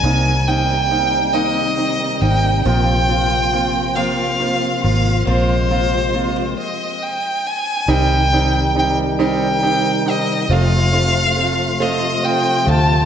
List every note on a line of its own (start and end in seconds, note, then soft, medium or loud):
0.00 2.18 C2 medium
0.00 6.54 C3 medium
0.00 1.34 D#3 medium
0.00 2.62 G3 medium
0.00 1.12 A#3 medium
0.00 0.26 C4 soft
0.00 2.63 C4 medium
0.00 0.30 C4 medium
0.00 2.62 D#4 medium
0.00 0.50 G#5 loud
0.04 0.30 A#3 medium
0.04 0.30 D#4 medium
0.26 0.69 C4 medium
0.48 0.74 A#3 medium
0.48 0.74 C4 medium
0.48 0.74 D#4 medium
0.48 0.90 G4 medium
0.48 1.35 G5 loud
0.70 1.56 C4 medium
0.91 1.17 A#3 medium
0.91 1.17 C4 medium
0.91 1.17 D#4 medium
0.91 1.78 G4 medium
1.13 2.43 A#3 medium
1.33 2.65 D#3 medium
1.33 1.61 A#3 medium
1.33 1.61 C4 medium
1.33 1.61 D#4 loud
1.33 2.23 D#5 loud
1.57 2.00 C4 medium
1.77 2.04 C4 medium
1.77 2.04 D#4 medium
1.77 2.21 G4 medium
2.00 2.86 C4 soft
2.21 2.63 G#1 medium
2.21 2.48 A#3 medium
2.21 2.48 C4 medium
2.21 2.49 D#4 medium
2.21 2.74 G4 medium
2.21 2.64 G5 loud
2.43 2.89 A#3 medium
2.64 4.80 A#1 loud
2.64 6.54 F3 medium
2.64 3.95 F3 medium
2.64 5.25 A#3 medium
2.64 2.92 A#3 medium
2.64 2.92 C4 medium
2.64 6.54 F4 medium
2.64 2.92 F4 medium
2.64 3.97 G5 loud
2.86 3.30 C4 medium
3.08 3.36 A#3 medium
3.08 3.36 C4 medium
3.08 3.51 F4 medium
3.08 3.36 F4 medium
3.31 4.17 C4 medium
3.53 3.79 A#3 medium
3.53 3.79 C4 medium
3.53 4.39 F4 medium
3.53 3.79 F4 medium
3.75 5.04 A#3 soft
3.95 5.26 F3 medium
3.95 4.23 A#3 medium
3.95 4.23 C4 medium
3.95 4.23 F4 loud
3.95 4.83 F5 medium
4.18 4.61 C4 medium
4.40 4.66 A#3 medium
4.40 4.66 C4 medium
4.40 4.82 F4 medium
4.40 4.67 F4 medium
4.62 5.48 C4 soft
4.84 5.25 G#1 medium
4.84 5.10 A#3 medium
4.84 5.10 C4 medium
4.84 5.70 F4 medium
4.84 5.11 F4 medium
4.84 5.24 F5 medium
5.05 6.35 A#3 medium
5.27 6.54 A#1 loud
5.27 6.67 F3 medium
5.27 6.57 G#3 medium
5.27 5.53 A#3 medium
5.27 5.54 C4 medium
5.27 5.54 F4 loud
5.27 6.55 C5 loud
5.49 5.92 C4 medium
5.71 5.97 A#3 medium
5.71 5.97 C4 medium
5.71 6.13 F4 medium
5.71 5.97 F4 medium
5.93 7.17 C4 medium
6.14 6.40 A#3 medium
6.14 6.41 C4 medium
6.14 6.67 F4 medium
6.14 6.41 F4 medium
6.36 6.67 A#3 medium
6.59 7.04 D#5 medium
7.02 7.48 G5 medium
7.46 7.92 G#5 medium
7.88 10.06 C2 loud
7.88 13.05 C3 medium
7.88 10.47 D#3 medium
7.88 10.47 G3 medium
7.88 8.15 G3 loud
7.88 8.15 C4 medium
7.88 10.47 D#4 medium
7.88 8.15 D#4 loud
7.88 8.77 G5 loud
8.33 8.59 G3 medium
8.33 8.59 C4 medium
8.33 8.59 D#4 medium
8.76 9.02 G3 medium
8.76 9.02 C4 medium
8.76 9.02 D#4 medium
8.76 8.98 G5 medium
9.19 9.45 G3 medium
9.19 9.45 C4 loud
9.19 9.46 D#4 loud
9.23 10.11 G5 loud
9.63 9.89 G3 medium
9.63 9.89 C4 medium
9.63 9.89 D#4 medium
10.06 10.47 G1 medium
10.06 10.32 G3 medium
10.06 10.32 C4 medium
10.06 10.32 D#4 medium
10.10 10.54 D#5 loud
10.49 12.63 F1 loud
10.49 13.05 F3 medium
10.49 13.05 A3 medium
10.49 10.76 A3 medium
10.49 10.76 C4 medium
10.49 13.05 F4 medium
10.49 10.76 F4 loud
10.49 11.83 F5 loud
10.93 11.19 A3 medium
10.93 11.19 C4 medium
10.93 11.19 F4 medium
11.37 11.63 A3 medium
11.37 11.63 C4 medium
11.37 11.63 F4 medium
11.80 12.06 A3 loud
11.80 12.06 C4 medium
11.80 12.07 F4 loud
11.80 12.26 D#5 loud
12.23 12.49 A3 medium
12.23 12.50 C4 medium
12.23 12.50 F4 medium
12.23 12.70 G5 loud
12.66 13.05 D2 medium
12.66 12.92 A3 medium
12.66 12.93 C4 medium
12.66 12.93 F4 medium
12.66 13.05 A5 loud